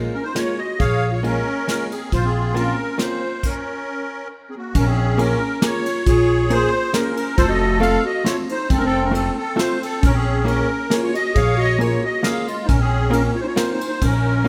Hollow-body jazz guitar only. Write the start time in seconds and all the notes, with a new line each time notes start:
Already playing: G#3 A#3 C#4 F4
0.35 G#3 A#3 C#4 F4
1.23 G#3 A#3 C#4 F4
1.68 G#3 A#3 C#4 F4
2.54 A#3 C4 C#4 F4
2.98 A#3 C4 C#4 F4
5.18 A#3 C#4 F4 G#4 A#4
5.62 A#3 C#4 F4 G#4 A#4
6.50 A#3 C#4 F4 G#4 A#4
6.93 A#3 C#4 F4 G#4 A#4
7.80 A3 C4 F4 A4 C5
8.24 A3 C4 F4 A4 C5
9.11 A3 C4 F4 A4 C5
9.56 A3 C4 F4 A4 C5
10.45 A#3 C#4 F4 G#4 A#4
10.90 A#3 C#4 F4 G#4 A#4
11.78 A#3 C#4 F4 G#4 A#4
12.23 A#3 C#4 F4 G#4 A#4
13.10 A#3 C4 C#4 F4 A#4
13.56 A#3 C4 C#4 F4 A#4
14.44 A#3 C#4